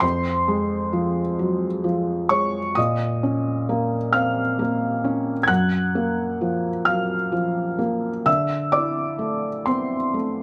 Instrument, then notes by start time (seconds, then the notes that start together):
felt piano
0.00 F2 C5 C6
0.48 G#3
0.93 F3
1.39 F#3
1.84 F3
2.29 G#3 C#5 C#6
2.75 A#2 D#5 D#6
3.23 C#4
3.69 A#3
4.13 C4 F5 F6
4.59 A#3
5.04 C#4
5.43 G#6
5.48 F#2 F#5 F#6
5.95 A#3
6.41 F3
6.85 F#3 F5 F6
7.32 F3
7.79 A#3
8.26 D3 E5 E6
8.72 E4 D5 D6
9.19 A3
9.66 B3 C4 C6
10.14 A3